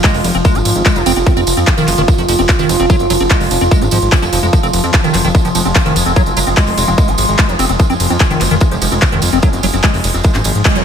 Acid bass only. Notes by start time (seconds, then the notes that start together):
0.04 G#3
0.24 F#3
0.35 C4
0.45 G#3
0.55 F4
0.86 G#3
0.96 F3
1.06 C4
1.16 C4
1.27 F3
1.37 C4
1.57 C4
1.78 D#3
1.88 F#3
1.98 D#3
2.08 G#3
2.18 F3
2.29 F3
2.39 C4
2.49 D#3
2.59 D#3
2.69 F#3
2.80 C4
2.90 F#3
3.10 F#3
3.20 C4
3.31 G#3
3.51 F#3
3.61 C4
3.71 G#3
3.82 F4
3.92 F3
4.12 F3
4.22 F3
4.33 F3
4.43 G#3
4.53 F3
4.63 C4
4.84 C4
5.04 D#3
5.14 F#3
5.25 D#3
5.35 G#3
5.45 F3
5.55 F3
5.65 C4
5.76 D#3
5.86 D#3
5.96 F#3
6.06 C4
6.16 F#3
6.37 F#3
6.47 C4
6.57 G#3
6.78 F#3
6.88 C4
6.98 G#3
7.08 F4
7.39 G#3
7.49 F3
7.59 C4
7.69 C4
7.80 F3
7.90 C4
8.10 C4
8.31 D#3
8.41 F#3
8.51 D#3
8.61 G#3
8.71 F3
8.82 F3
8.92 C4
9.02 D#3
9.12 D#3
9.22 F#3
9.33 C4
9.43 F#3
9.63 F#3
9.73 C4
9.84 G#3
10.04 F#3
10.14 C4
10.24 G#3
10.35 F4
10.65 G#3
10.76 F3